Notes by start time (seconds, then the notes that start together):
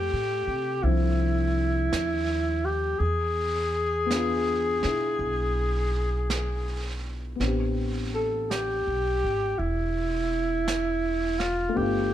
Already playing: A3 C4 E4 G4
0.13 A2
0.48 C3
0.83 C2 F3 C4 D4 E4, brush sweep
1.93 D#2, brush sweep, snare, hi-hat pedal
2.65 G4
2.99 E2 G#4, brush sweep
4.06 B3
4.10 D4, brush sweep, snare, hi-hat pedal
4.14 F4 G#4
4.82 B2 D4 E4, snare
5.19 B1, brush sweep
6.30 brush sweep, snare, hi-hat pedal
7.36 B3 C4
7.40 A1 D4, brush sweep, snare
7.46 G4
8.15 A4
8.51 G4, brush sweep, snare, hi-hat pedal
8.87 B1
9.24 G#1
9.59 E1 E4, brush sweep
10.68 brush sweep, snare, hi-hat pedal
11.40 F4, snare
11.69 A3 B3
11.75 G1 D4 G4, brush sweep
11.80 F4